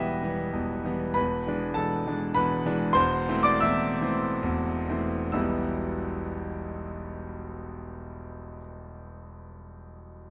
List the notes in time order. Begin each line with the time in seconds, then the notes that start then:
Already playing: E1 E2 E3 G3 B3 G4 B4 D#5 E5
0.23 E3 G3 B3
0.53 E1 E2
0.84 E3 G3 B3
1.14 E1 E2 B4 B5
1.47 E3 G#3 D4
1.74 E1 E2 A4 A5
2.07 E3 G#3 D4
2.35 E1 E2 B4 B5
2.65 E3 G#3 D4
2.93 E1 E2 C5 C6
3.28 E3 A3 C4
3.43 D5 D6
3.60 E1 E2 E5 E6
4.01 E3 A3 C4
4.43 E1 E2
4.89 E3 A3 C4
5.32 E1 B1 E3 G3 B3 E4 E6